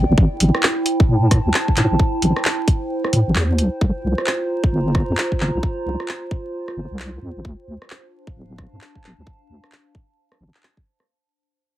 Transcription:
0.00 3.81 E4 medium
0.00 1.51 D5 medium
0.00 8.91 G5 medium
0.00 downlifter medium
0.09 0.15 G1 medium
0.18 0.28 A1 medium
0.18 kick loud
0.30 11.08 C5 loud
0.40 0.51 A1 medium
0.40 open hi-hat loud
0.55 cross-stick medium
0.63 3.81 A5 medium
0.63 clap loud
0.86 open hi-hat medium
1.00 kick loud
1.09 1.39 A2 medium
1.31 kick loud
1.31 cross-stick medium
1.31 open hi-hat loud
1.45 1.52 D2 medium
1.54 clap loud
1.68 kick medium
1.77 1.87 A2 loud
1.77 clap medium
1.77 open hi-hat medium
1.91 1.97 A1 medium
1.99 kick loud
2.22 2.33 A1 medium
2.22 open hi-hat loud
2.36 cross-stick medium
2.45 clap loud
2.68 kick loud
2.68 open hi-hat medium
3.05 cross-stick medium
3.13 3.23 A2 loud
3.13 open hi-hat loud
3.27 3.35 A1 medium
3.36 3.60 E2 medium
3.36 clap loud
3.58 3.69 C2 medium
3.58 open hi-hat medium
3.81 3.92 C2 medium
3.81 8.03 F4 medium
3.81 kick loud
4.02 4.14 C2 medium
4.02 7.45 A#5 medium
4.18 cross-stick medium
4.27 clap loud
4.64 kick loud
4.72 5.03 G1 medium
4.95 kick loud
4.95 cross-stick medium
5.09 5.15 F2 medium
5.18 clap loud
5.32 kick medium
5.40 5.51 G1 medium
5.40 clap medium
5.55 5.61 C2 medium
5.63 kick loud
5.86 5.96 C2 medium
6.00 cross-stick medium
6.08 clap loud
6.31 kick loud
6.68 cross-stick medium
6.77 6.87 G1 loud
6.91 7.18 C2 medium
6.99 clap loud
7.22 7.32 F2 loud
7.36 7.42 A#1 medium
7.45 7.55 D2 medium
7.45 11.08 D4 medium
7.45 kick loud
7.67 7.78 D2 medium
7.82 cross-stick medium
7.90 clap loud
8.00 11.08 F5 medium
8.13 11.08 A5 medium
8.27 kick medium
8.36 8.66 D1 medium
8.58 kick medium
8.58 cross-stick medium
8.73 8.79 G2 medium
8.81 clap loud
8.95 kick medium
9.04 9.14 D1 medium
9.04 clap medium
9.18 9.24 D2 medium
9.27 kick loud
9.49 9.60 D2 medium
9.64 cross-stick medium
9.72 clap loud
9.95 kick medium
10.32 cross-stick medium
10.40 10.51 A1 medium
10.54 clap medium
10.63 clap loud
10.77 kick medium
11.00 cross-stick soft

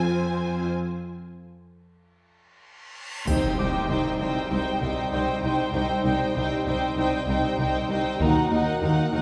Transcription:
0.00 0.68 F2 soft
0.00 0.68 C4 soft
0.00 0.72 F4 soft
0.00 0.75 A4 soft
0.00 0.68 C5 soft
0.00 0.72 G#5 medium
0.72 reverse cymbal soft
3.27 3.35 C2 soft
3.27 3.88 C3 soft
3.27 8.16 G3 soft
3.27 8.17 D#4 soft
3.27 3.57 D#4 soft
3.27 3.58 C5 soft
3.27 3.58 G5 soft
3.27 taiko soft
3.27 impact soft
3.27 triangle soft
3.59 3.67 C2 soft
3.59 4.50 C4 soft
3.59 3.89 D#4 soft
3.59 3.88 C5 soft
3.59 3.88 G5 soft
3.59 7.49 D6 soft
3.89 3.97 C2 soft
3.89 3.98 C2 soft
3.89 4.19 C3 soft
3.89 4.19 D#4 soft
3.89 4.19 C5 soft
3.89 4.19 G5 soft
4.20 4.28 C2 soft
4.20 4.29 C2 soft
4.20 4.80 C3 soft
4.20 4.50 D#4 soft
4.20 4.50 C5 soft
4.20 4.50 G5 soft
4.51 4.59 C2 soft
4.51 4.60 C2 soft
4.51 6.04 C4 soft
4.51 4.80 D#4 soft
4.51 4.81 C5 soft
4.51 4.81 G5 soft
4.82 4.90 C2 soft
4.82 5.11 C3 soft
4.82 5.11 D#4 soft
4.82 5.12 C5 soft
4.82 5.12 G5 soft
5.13 5.21 C2 soft
5.13 5.22 C2 soft
5.13 5.42 C3 soft
5.13 5.42 D#4 soft
5.13 8.23 C5 soft
5.13 5.42 C5 soft
5.13 5.42 G5 soft
5.13 8.23 C6 soft
5.43 5.51 C2 soft
5.43 5.52 C2 soft
5.43 5.73 C3 soft
5.43 5.73 D#4 soft
5.43 5.73 C5 soft
5.43 5.73 G5 soft
5.74 5.82 C2 soft
5.74 6.35 C3 soft
5.74 6.04 D#4 soft
5.74 6.04 C5 soft
5.74 6.03 G5 soft
6.04 6.12 C2 soft
6.04 6.13 C2 soft
6.04 6.97 C4 soft
6.04 6.35 D#4 soft
6.04 6.35 C5 soft
6.04 6.35 G5 soft
6.36 6.44 C2 soft
6.36 6.66 C3 soft
6.36 6.65 D#4 soft
6.36 6.66 C5 soft
6.36 6.66 G5 soft
6.66 6.74 C2 soft
6.66 7.27 C3 soft
6.66 6.96 D#4 soft
6.66 6.97 C5 soft
6.66 6.96 G5 soft
6.98 7.06 C2 soft
6.98 8.23 C4 soft
6.98 7.28 D#4 soft
6.98 7.27 C5 soft
6.98 7.27 G5 soft
7.28 7.36 C2 soft
7.28 7.57 C3 soft
7.28 7.57 D#4 soft
7.28 7.58 C5 soft
7.28 7.58 G5 soft
7.58 7.67 C2 soft
7.58 7.68 C2 soft
7.58 7.88 C3 soft
7.58 7.89 D#4 soft
7.58 7.88 C5 soft
7.58 7.89 G5 soft
7.89 7.97 C2 soft
7.89 7.99 C2 soft
7.89 8.23 C3 soft
7.89 8.20 D#4 soft
7.89 8.20 C5 soft
7.89 8.21 G5 soft
8.19 8.29 D#2 soft
8.19 8.30 D#2 soft
8.19 8.80 D#3 medium
8.19 9.22 A#3 soft
8.19 8.50 D#4 soft
8.19 9.22 F#4 soft
8.19 8.50 A#4 soft
8.19 8.51 F#5 soft
8.19 9.22 A#5 soft
8.19 taiko medium
8.51 8.60 D#2 soft
8.51 8.81 D#4 soft
8.51 9.22 D#4 soft
8.51 8.80 A#4 soft
8.51 8.82 F#5 soft
8.82 8.91 D#2 soft
8.82 9.11 D#3 soft
8.82 9.12 D#4 soft
8.82 9.12 A#4 soft
8.82 9.12 F#5 soft
9.12 9.22 D#2 soft
9.12 9.22 D#3 medium
9.12 9.22 D#4 soft
9.12 9.22 A#4 soft
9.12 9.22 F#5 soft

